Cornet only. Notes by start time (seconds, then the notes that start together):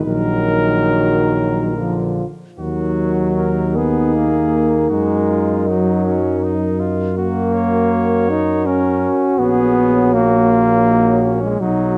0.06 A#4
2.60 F#4
3.38 A#4
3.76 G#4
4.90 F#4
5.29 F4
5.68 D#4
6.06 C#4
6.44 D#4
6.80 F4
7.18 F#4
7.54 C#5
8.66 A#4
9.38 G#4
10.15 F#4
10.51 F4
10.88 D#4
11.23 C#4
11.61 D#4